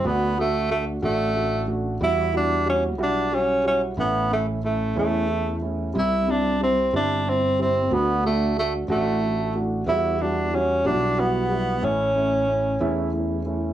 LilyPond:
<<
  \new Staff \with { instrumentName = "Grand piano" } { \time 6/8 \key d \major \tempo 4. = 61 <a d' fis'>8 <a d' fis'>8 <a d' fis'>8 <a d' fis'>8 <a d' fis'>8 <a d' fis'>8 | <g e' fis'>8 <g e' fis'>8 <g e' fis'>8 <g e' fis'>8 <g e' fis'>8 <g e' fis'>8 | <a cis' e'>8 <a cis' e'>8 <a cis' e'>8 <a cis' e'>8 r8 <a cis' e'>8 | <g c' e'>8 <g c' e'>8 <g c' e'>8 <g c' e'>8 <c' e'>8 <g c' e'>8 |
<a d' fis'>8 <a d' fis'>8 <a fis'>8 <a d' fis'>8 <d' fis'>8 <a d' fis'>8 | <g e' fis'>8 <g e' fis'>8 <g e' fis'>8 <g e' fis'>8 <g e' fis'>8 <g e' fis'>8 | <a cis' e'>8 <a cis' e'>8 <a cis' e'>8 <a cis' e'>8 <a cis' e'>8 <a cis' e'>8 | }
  \new Staff \with { instrumentName = "Tenor saxophone" } { \time 6/8 \key d \major b8 a8 a8 a4 r8 | e'8 d'8 cis'8 d'8 cis'8 cis'8 | b8 a8 a8 a4 r8 | e'8 d'8 c'8 d'8 c'8 c'8 |
b8 a8 a8 a4 r8 | e'8 d'8 cis'8 d'8 b4 | cis'2 r4 | }
  \new Staff \with { instrumentName = "Fretless electric bass" } { \clef bass \time 6/8 \key d \major d,4. a,,4. | e,4. b,,4. | a,,4. e,4. | c,4. g,,4. |
d,4. a,,4. | e,4. b,,4. | a,,4. e,4. | }
>>